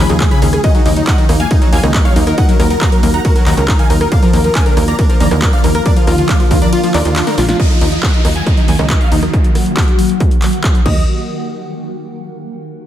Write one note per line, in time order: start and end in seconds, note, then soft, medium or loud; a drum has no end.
0.00 0.60 C#3 medium
0.00 0.60 F3 medium
0.00 0.60 G#3 medium
0.00 0.60 F4 loud
0.09 0.27 D#2 loud
0.09 0.14 C#3 medium
0.09 0.17 G#4 medium
0.09 closed hi-hat medium
0.20 0.28 C#4 medium
0.20 0.28 G#4 medium
0.20 kick loud
0.20 clap loud
0.20 closed hi-hat medium
0.20 ride medium
0.31 0.42 C#3 loud
0.31 0.39 G#5 medium
0.31 0.39 B5 loud
0.31 closed hi-hat medium
0.42 0.59 D#2 medium
0.42 0.47 C#4 medium
0.42 0.50 G#4 medium
0.42 open hi-hat loud
0.53 0.58 C#4 medium
0.53 0.61 G#4 medium
0.53 cross-stick medium
0.53 closed hi-hat medium
0.64 0.68 D#3 loud
0.64 4.08 D#3 medium
0.64 4.08 F#3 medium
0.64 4.08 A#3 medium
0.64 0.71 F#4 medium
0.64 4.08 F#4 loud
0.64 0.71 D#5 loud
0.64 0.72 D#5 loud
0.64 kick loud
0.64 closed hi-hat medium
0.64 ride medium
0.75 0.79 F#3 loud
0.75 0.82 D#4 medium
0.75 0.83 D#4 medium
0.75 closed hi-hat medium
0.86 1.03 D#2 loud
0.86 0.93 A#3 medium
0.86 0.93 D#4 medium
0.86 open hi-hat loud
0.96 1.01 F#3 medium
0.96 1.04 D#4 medium
0.96 closed hi-hat medium
1.07 1.12 D#4 loud
1.07 1.15 D#5 medium
1.07 1.15 F#5 medium
1.07 1.15 F#5 loud
1.07 kick loud
1.07 clap loud
1.07 closed hi-hat medium
1.07 ride medium
1.18 1.26 D#3 loud
1.18 1.26 D#4 medium
1.18 closed hi-hat medium
1.29 1.46 D#2 medium
1.29 1.39 A#3 medium
1.29 1.37 D#4 medium
1.29 cross-stick medium
1.29 open hi-hat loud
1.40 1.48 A#3 medium
1.40 1.48 F5 medium
1.40 1.48 G#5 medium
1.40 1.48 G#5 loud
1.40 closed hi-hat medium
1.51 1.58 D#4 medium
1.51 1.59 D#4 medium
1.51 1.55 D#4 loud
1.51 kick loud
1.51 closed hi-hat medium
1.51 ride medium
1.61 1.66 F#3 loud
1.61 1.69 D#4 medium
1.61 closed hi-hat medium
1.72 1.81 D#2 medium
1.72 1.80 A#3 medium
1.72 1.80 F5 medium
1.72 1.80 G#5 medium
1.72 1.80 G#5 loud
1.72 open hi-hat loud
1.83 2.00 C#2 loud
1.83 1.88 D#3 medium
1.83 1.91 D#4 medium
1.83 cross-stick medium
1.83 closed hi-hat medium
1.94 2.02 D#4 medium
1.94 kick loud
1.94 clap loud
1.94 closed hi-hat medium
1.94 ride medium
2.05 2.13 F#3 medium
2.05 2.13 C#5 medium
2.05 2.13 F5 loud
2.05 2.13 F5 medium
2.05 closed hi-hat medium
2.16 2.33 D#2 loud
2.16 2.26 A#3 medium
2.16 2.24 D#4 medium
2.16 open hi-hat loud
2.27 2.35 D#4 medium
2.27 2.37 A#4 loud
2.27 cross-stick medium
2.27 closed hi-hat medium
2.38 2.42 D#4 loud
2.38 2.45 D#5 medium
2.38 2.45 F#5 loud
2.38 kick loud
2.38 closed hi-hat medium
2.38 ride medium
2.49 2.53 F#3 loud
2.49 2.56 A#4 medium
2.49 closed hi-hat medium
2.59 2.77 D#2 loud
2.59 2.67 A#4 medium
2.59 2.64 A#4 medium
2.59 2.67 A#4 medium
2.59 cross-stick medium
2.59 open hi-hat loud
2.70 2.75 D#3 medium
2.70 2.78 A#4 medium
2.70 closed hi-hat medium
2.81 2.89 A#3 medium
2.81 2.89 F#5 medium
2.81 2.89 A#5 medium
2.81 2.89 A#5 loud
2.81 kick loud
2.81 clap loud
2.81 closed hi-hat medium
2.81 ride medium
2.92 3.00 F#3 medium
2.92 3.00 A#4 medium
2.92 closed hi-hat medium
3.03 3.20 D#2 medium
3.03 3.13 A#3 medium
3.03 3.11 A#4 medium
3.03 open hi-hat loud
3.14 3.18 D#4 medium
3.14 3.22 F#5 medium
3.14 3.22 A#5 loud
3.14 closed hi-hat medium
3.25 3.35 F#4 loud
3.25 3.32 A#4 medium
3.25 kick loud
3.25 closed hi-hat medium
3.25 ride medium
3.35 3.40 F#3 loud
3.35 3.43 A#4 medium
3.35 closed hi-hat medium
3.46 3.55 D#2 medium
3.46 3.54 D#3 loud
3.46 3.54 F#5 medium
3.46 3.54 A#5 medium
3.46 clap medium
3.46 open hi-hat loud
3.57 3.74 C#2 loud
3.57 3.62 D#3 medium
3.57 3.65 A#4 medium
3.57 closed hi-hat medium
3.68 3.76 D#4 medium
3.68 3.76 A#4 medium
3.68 kick loud
3.68 clap loud
3.68 closed hi-hat medium
3.68 ride medium
3.79 3.89 D#3 loud
3.79 3.87 F5 medium
3.79 3.87 G#5 medium
3.79 closed hi-hat medium
3.90 4.07 D#2 medium
3.90 3.94 D#4 medium
3.90 3.98 A#4 medium
3.90 open hi-hat loud
4.01 4.05 D#4 medium
4.01 4.08 A#4 medium
4.01 cross-stick medium
4.01 closed hi-hat medium
4.12 4.16 D3 loud
4.12 7.56 D3 medium
4.12 7.56 F3 medium
4.12 7.56 A#3 medium
4.12 7.56 F4 loud
4.12 4.19 D5 medium
4.12 4.19 F5 loud
4.12 kick loud
4.12 closed hi-hat medium
4.12 ride medium
4.23 4.27 F3 loud
4.23 4.30 A#4 medium
4.23 closed hi-hat medium
4.33 4.51 D#2 loud
4.33 4.41 A#3 medium
4.33 4.41 A#4 medium
4.33 open hi-hat loud
4.44 4.49 F3 medium
4.44 4.52 A#4 medium
4.44 closed hi-hat medium
4.55 4.60 D4 loud
4.55 4.63 F5 medium
4.55 4.63 G#5 loud
4.55 4.63 G#5 medium
4.55 kick loud
4.55 clap loud
4.55 closed hi-hat medium
4.55 ride medium
4.66 4.74 D3 loud
4.66 4.74 A#4 medium
4.66 closed hi-hat medium
4.77 4.94 D#2 medium
4.77 4.87 A#3 medium
4.77 4.85 A#4 medium
4.77 cross-stick medium
4.77 open hi-hat loud
4.88 4.95 A#3 medium
4.88 4.96 D5 medium
4.88 4.95 A#5 loud
4.88 4.96 A#5 medium
4.88 closed hi-hat medium
4.99 5.03 D4 loud
4.99 5.06 A#4 medium
4.99 kick loud
4.99 closed hi-hat medium
4.99 ride medium
5.09 5.14 F3 loud
5.09 5.17 A#4 medium
5.09 closed hi-hat medium
5.20 5.29 D#2 medium
5.20 5.28 A#3 medium
5.20 5.28 D5 medium
5.20 5.28 A#5 medium
5.20 open hi-hat loud
5.31 5.48 D#2 loud
5.31 5.36 D3 medium
5.31 5.39 A#4 medium
5.31 cross-stick medium
5.31 closed hi-hat medium
5.42 5.52 D3 medium
5.42 5.50 A#4 medium
5.42 kick loud
5.42 clap loud
5.42 closed hi-hat medium
5.42 ride medium
5.53 5.60 F3 medium
5.53 5.61 D5 medium
5.53 5.61 F5 loud
5.53 5.61 F5 medium
5.53 closed hi-hat medium
5.64 5.81 D#2 medium
5.64 5.74 A#3 medium
5.64 5.72 A#4 medium
5.64 open hi-hat loud
5.75 5.82 A#4 medium
5.75 5.85 A#4 loud
5.75 5.83 A#4 medium
5.75 cross-stick medium
5.75 closed hi-hat medium
5.86 5.90 D4 loud
5.86 5.93 A#4 medium
5.86 5.93 D5 loud
5.86 kick loud
5.86 closed hi-hat medium
5.86 ride medium
5.96 6.01 F3 loud
5.96 6.04 F4 medium
5.96 closed hi-hat medium
6.07 6.25 D#2 loud
6.07 6.15 F4 medium
6.07 6.12 A#4 medium
6.07 cross-stick medium
6.07 open hi-hat loud
6.18 6.23 D3 medium
6.18 6.26 F4 medium
6.18 closed hi-hat medium
6.29 6.37 A#3 medium
6.29 6.37 D5 medium
6.29 6.37 F5 loud
6.29 kick loud
6.29 clap loud
6.29 closed hi-hat medium
6.29 ride medium
6.40 6.47 F3 medium
6.40 6.48 F4 medium
6.40 closed hi-hat medium
6.51 6.68 D#2 medium
6.51 6.61 A#3 medium
6.51 6.58 F4 medium
6.51 6.59 F4 medium
6.51 kick medium
6.51 open hi-hat loud
6.62 6.66 D4 medium
6.62 6.69 A#4 medium
6.62 6.69 D5 loud
6.62 closed hi-hat medium
6.73 6.80 F4 medium
6.73 6.83 F4 loud
6.73 6.80 F4 medium
6.73 closed hi-hat medium
6.73 ride medium
6.84 6.88 F3 loud
6.84 6.91 F4 medium
6.84 closed hi-hat medium
6.94 7.03 D#2 loud
6.94 7.02 D3 loud
6.94 7.02 A#4 medium
6.94 7.02 D5 medium
6.94 clap medium
6.94 open hi-hat loud
7.05 7.22 D#2 medium
7.05 7.10 D3 medium
7.05 7.13 F4 medium
7.05 closed hi-hat medium
7.16 7.24 D4 medium
7.16 7.24 F4 medium
7.16 clap loud
7.16 closed hi-hat medium
7.16 ride medium
7.27 7.37 D3 loud
7.27 7.35 D4 medium
7.27 7.35 A#4 loud
7.27 7.35 A#4 medium
7.27 snare medium
7.27 closed hi-hat medium
7.38 7.55 A#1 loud
7.38 7.42 D4 medium
7.38 7.46 F4 medium
7.38 snare medium
7.38 open hi-hat loud
7.49 7.53 D4 medium
7.49 7.56 F4 medium
7.49 snare medium
7.49 closed hi-hat medium
7.59 10.82 D#3 medium
7.59 10.82 F#3 medium
7.59 10.82 A#3 medium
7.59 10.82 F#4 medium
7.59 7.67 D#5 loud
7.59 kick loud
7.59 closed hi-hat medium
7.59 downlifter medium
7.70 7.78 D#4 medium
7.70 closed hi-hat medium
7.81 7.98 D#2 loud
7.81 7.89 D#4 medium
7.81 open hi-hat loud
7.92 8.00 D#4 medium
7.92 closed hi-hat medium
8.03 8.11 F#5 medium
8.03 kick loud
8.03 clap loud
8.03 closed hi-hat soft
8.09 closed hi-hat medium
8.14 8.22 D#4 medium
8.14 closed hi-hat medium
8.25 8.42 D#2 medium
8.25 8.32 D#4 medium
8.25 cross-stick medium
8.25 open hi-hat loud
8.36 8.43 G#5 medium
8.36 closed hi-hat medium
8.46 8.54 D#4 medium
8.46 kick loud
8.46 closed hi-hat medium
8.57 8.65 D#4 medium
8.57 closed hi-hat medium
8.68 8.77 D#2 medium
8.68 8.76 G#5 medium
8.68 open hi-hat loud
8.79 8.96 C#2 loud
8.79 8.87 D#4 medium
8.79 cross-stick medium
8.79 closed hi-hat medium
8.90 8.98 D#4 medium
8.90 kick loud
8.90 clap loud
8.90 closed hi-hat medium
9.01 9.09 F5 medium
9.01 closed hi-hat medium
9.12 9.29 D#2 medium
9.12 9.19 D#4 medium
9.12 open hi-hat loud
9.23 9.30 D#4 medium
9.23 cross-stick medium
9.23 closed hi-hat medium
9.33 kick loud
9.33 closed hi-hat medium
9.44 closed hi-hat medium
9.55 cross-stick medium
9.55 open hi-hat loud
9.66 closed hi-hat medium
9.77 kick loud
9.77 clap loud
9.77 closed hi-hat soft
9.82 closed hi-hat medium
9.88 closed hi-hat medium
9.99 open hi-hat loud
10.09 closed hi-hat medium
10.20 kick loud
10.20 closed hi-hat medium
10.31 closed hi-hat medium
10.42 clap medium
10.42 open hi-hat loud
10.53 closed hi-hat medium
10.64 kick loud
10.64 clap loud
10.64 closed hi-hat medium
10.75 closed hi-hat medium
10.86 11.06 D#2 loud
10.86 11.02 D#5 medium
10.86 kick loud
10.86 crash medium